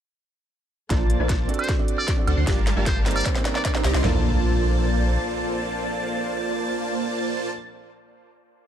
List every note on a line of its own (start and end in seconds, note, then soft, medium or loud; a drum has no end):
0.89 1.18 A#1 medium
0.89 1.48 A3 medium
0.89 1.01 A#3 medium
0.89 1.48 A#3 medium
0.89 1.17 A#3 medium
0.89 1.01 D4 medium
0.89 1.17 F4 medium
0.89 1.01 F4 medium
0.89 1.02 A4 medium
0.89 1.17 C5 medium
0.89 4.01 D5 medium
0.89 1.17 D5 medium
0.89 1.02 D5 medium
0.89 1.17 A5 medium
0.89 1.17 A6 medium
0.89 kick medium
0.89 snare soft
0.89 closed hi-hat medium
0.89 riser medium
1.10 closed hi-hat medium
1.19 1.46 A#1 medium
1.19 1.30 A#3 medium
1.19 1.48 A#3 medium
1.19 1.30 D4 medium
1.19 1.31 F4 medium
1.19 1.48 F4 medium
1.19 1.31 A4 medium
1.19 1.48 C5 medium
1.19 1.48 D5 medium
1.19 1.31 D5 medium
1.19 1.48 A5 medium
1.19 1.48 A6 medium
1.29 kick medium
1.29 snare medium
1.29 closed hi-hat medium
1.48 2.46 F#3 medium
1.48 1.76 C4 medium
1.48 2.46 C4 medium
1.48 1.76 D4 medium
1.48 1.76 F#4 medium
1.48 1.76 A4 medium
1.48 1.77 D5 medium
1.48 closed hi-hat soft
1.54 closed hi-hat medium
1.59 1.72 C5 medium
1.59 closed hi-hat soft
1.59 high woodblock medium
1.64 closed hi-hat medium
1.69 kick loud
1.69 snare medium
1.69 closed hi-hat medium
1.77 2.15 C4 medium
1.77 2.15 D4 medium
1.77 2.15 F#4 medium
1.77 2.16 A4 medium
1.77 2.16 D5 medium
1.88 closed hi-hat medium
1.98 2.11 D5 medium
1.98 high woodblock medium
2.08 kick medium
2.08 snare medium
2.08 closed hi-hat medium
2.17 2.35 C4 medium
2.17 2.35 D4 medium
2.17 2.35 F#4 medium
2.17 2.36 A4 medium
2.17 2.36 D5 loud
2.27 2.35 D2 medium
2.27 2.35 D3 medium
2.27 2.35 D4 medium
2.27 2.35 C5 medium
2.27 2.35 F#5 medium
2.27 2.35 A5 loud
2.27 2.35 A6 loud
2.27 closed hi-hat medium
2.27 high woodblock medium
2.37 2.45 D2 loud
2.37 2.45 D3 medium
2.37 2.45 D4 medium
2.37 2.45 C5 medium
2.37 2.45 F#5 medium
2.37 2.45 C6 medium
2.37 2.45 C7 medium
2.46 2.75 G1 medium
2.46 4.02 G3 medium
2.46 2.74 G3 medium
2.46 2.58 A#3 medium
2.46 2.58 D4 medium
2.46 2.58 F4 medium
2.46 3.25 F4 medium
2.46 2.74 G4 medium
2.46 2.58 G4 medium
2.46 3.25 A#4 medium
2.46 2.74 A#4 medium
2.46 2.59 D5 medium
2.46 2.74 F5 medium
2.46 3.25 A5 medium
2.46 2.74 A5 medium
2.46 2.74 A6 medium
2.46 kick loud
2.46 snare medium
2.46 closed hi-hat medium
2.67 snare medium
2.67 closed hi-hat medium
2.75 3.22 G1 loud
2.75 3.24 G3 medium
2.75 2.87 A#3 medium
2.75 2.87 D4 medium
2.75 2.87 F4 medium
2.75 3.24 G4 medium
2.75 2.88 G4 medium
2.75 3.24 A#4 medium
2.75 2.88 D5 medium
2.75 3.24 F5 medium
2.75 3.24 A5 medium
2.75 3.24 A6 medium
2.86 2.99 C5 medium
2.86 kick medium
2.86 snare medium
2.86 closed hi-hat medium
3.05 3.33 A#3 medium
3.05 3.33 C4 medium
3.05 3.33 D#4 medium
3.05 3.33 G4 medium
3.05 3.34 C5 medium
3.05 snare medium
3.05 closed hi-hat soft
3.11 closed hi-hat medium
3.16 3.28 D5 medium
3.16 closed hi-hat medium
3.16 high woodblock medium
3.21 closed hi-hat medium
3.25 4.03 C3 medium
3.25 4.03 A#3 medium
3.25 4.03 D#4 medium
3.25 kick loud
3.25 snare medium
3.25 closed hi-hat medium
3.34 3.72 A#3 medium
3.34 3.72 C4 medium
3.34 3.72 D#4 medium
3.34 3.73 G4 medium
3.34 3.73 C5 medium
3.34 snare medium
3.45 snare loud
3.45 closed hi-hat medium
3.55 3.61 D5 medium
3.55 snare medium
3.65 3.71 D5 medium
3.65 kick medium
3.65 snare loud
3.65 closed hi-hat medium
3.74 3.92 A#3 medium
3.74 3.92 C4 medium
3.74 3.92 D#4 medium
3.74 3.93 G4 medium
3.74 3.93 C5 loud
3.74 snare medium
3.84 3.92 C2 medium
3.84 3.92 C4 medium
3.84 3.92 G4 medium
3.84 3.92 D5 medium
3.84 3.92 D#5 medium
3.84 3.92 A#5 loud
3.84 3.92 A#6 loud
3.84 snare loud
3.84 closed hi-hat medium
3.94 4.02 C2 medium
3.94 4.02 C4 medium
3.94 4.02 G4 medium
3.94 4.02 D5 medium
3.94 4.02 D#5 medium
3.94 4.02 C6 medium
3.94 4.02 C7 medium
3.94 snare loud
4.01 5.18 A#1 loud
4.01 7.51 A#2 medium
4.01 7.51 F3 medium
4.01 7.48 A#3 medium
4.01 7.51 A#3 medium
4.01 7.51 C4 medium
4.01 7.49 D4 medium
4.01 7.51 D4 medium
4.01 7.51 F4 medium
4.01 7.51 A4 medium
4.01 7.51 C5 medium
4.01 7.51 D5 medium
4.01 7.51 A5 loud
4.01 7.51 A6 medium
4.01 snare loud
4.01 clap medium
4.01 floor tom loud
4.01 impact medium
4.05 7.52 A4 medium
4.05 7.54 D5 medium